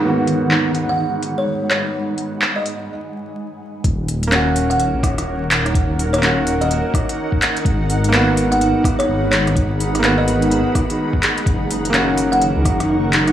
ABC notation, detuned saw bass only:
X:1
M:4/4
L:1/16
Q:"Swing 16ths" 1/4=126
K:Ebm
V:1 name="Detuned saw bass" clef=bass
z16 | z16 | E,,,8- E,,, B,,, E,,,6 | E,,,8- E,,, z6 z |
A,,,8- A,,, z3 A,,,4 | A,,,8- A,,, z6 z | G,,,8- G,,, D,, G,,,6 |]